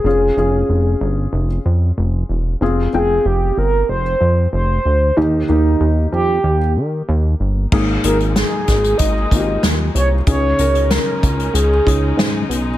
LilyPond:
<<
  \new Staff \with { instrumentName = "Soft synth lead" } { \time 4/4 \key aes \major \tempo 4 = 94 aes'2~ aes'8 r4. | r8 aes'8 g'8 bes'8 c''4 c''4 | ees'8 ees'4 g'4 r4. | r8 bes'8 aes'4 ees''4 r8 des''8 |
des''4 bes'4 aes'4 r4 | }
  \new Staff \with { instrumentName = "Felt piano" } { \time 4/4 \key aes \major <des' f' aes'>8 <des' f' aes'>4. r2 | <c' f' aes'>8 <c' f' g''>4. r2 | <bes ees' g'>8 <bes ees' g'>4. r2 | <bes ees' aes'>8 <bes ees' aes'>4. r8 <bes ees' f' g'>4. |
<des' ees' aes'>8 <des' ees' bes'>4. r8 <des' ees' aes'>4. | }
  \new Staff \with { instrumentName = "Felt piano" } { \clef bass \time 4/4 \key aes \major r1 | r1 | ees4. r2 r8 | aes,4. r2 r8 |
des4. r2 r8 | }
  \new Staff \with { instrumentName = "String section" } { \time 4/4 \key aes \major r1 | r1 | r1 | <aes bes ees'>1 |
<aes des' ees'>1 | }
  \new Staff \with { instrumentName = "Analog synth bass" } { \clef bass \time 4/4 \key aes \major f,,8 f,,8 f,,8 g,,8 f,,8 f,8 f,,8 e,,8 | f,,8 f,,8 f,,8 g,,8 f,,8 f,8 f,,8 d,8 | ees,8 ees,8 ees,8 f,8 ees,8 ees8 ees,8 g,,8 | aes,,8 aes,,8. r16 aes,,8 aes,,8 aes,,8 ees,8 c,8 |
des,8 des,8. r16 des,8 des,8 des,8 aes,8 b,,8 | }
  \new DrumStaff \with { instrumentName = "Drums" } \drummode { \time 4/4 r4 r4 r4 r4 | r4 r4 r4 r4 | r4 r4 r4 r4 | <cymc bd>8 hh16 hh16 <hh sn>8 <hh bd sn>16 hh16 <hh bd>8 <hh bd>8 <hh sn>8 hh8 |
<hh bd>8 hh16 hh16 <hh sn>8 <hh bd>16 hh16 hh8 <hh bd>8 <hh sn>8 hh8 | }
>>